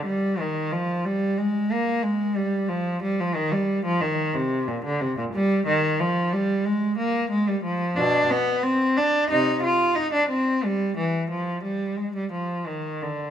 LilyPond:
\new Staff \with { instrumentName = "Cello" } { \clef bass \time 4/4 \key g \phrygian \tempo 4 = 91 g8 ees8 f8 g8 aes8 bes8 aes8 g8 | f8 g16 f16 ees16 g8 f16 ees8 c8 bes,16 d16 c16 bes,16 | \key f \dorian g8 ees8 f8 g8 aes8 bes8 aes16 g16 f8 | <b, d'>8 b8 c'8 d'8 <c ees'>8 f'8 ees'16 d'16 c'8 |
g8 e8 f8 g8 aes16 g16 f8 ees8 d8 | }